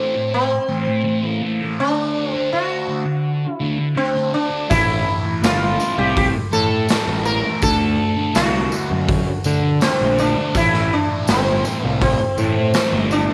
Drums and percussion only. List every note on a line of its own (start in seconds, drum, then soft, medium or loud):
4.71 kick loud
4.71 open hi-hat medium
4.71 tambourine medium
5.44 snare loud
5.44 open hi-hat soft
5.44 tambourine medium
5.80 tambourine medium
6.17 kick loud
6.17 open hi-hat medium
6.53 tambourine medium
6.89 snare loud
6.89 open hi-hat medium
6.89 tambourine medium
7.25 tambourine medium
7.62 kick loud
7.62 open hi-hat soft
7.62 tambourine medium
8.35 snare loud
8.35 open hi-hat medium
8.35 tambourine medium
8.72 tambourine medium
9.09 kick loud
9.09 open hi-hat medium
9.44 tambourine medium
9.81 snare loud
9.81 open hi-hat medium
9.81 tambourine medium
10.18 tambourine medium
10.54 kick medium
10.54 open hi-hat medium
10.54 tambourine medium
10.74 snare soft
11.28 snare loud
11.28 open hi-hat medium
11.28 tambourine medium
11.65 tambourine medium
12.02 kick loud
12.02 open hi-hat medium
12.38 tambourine medium
12.74 snare loud
12.74 open hi-hat soft
12.74 tambourine medium
13.11 tambourine medium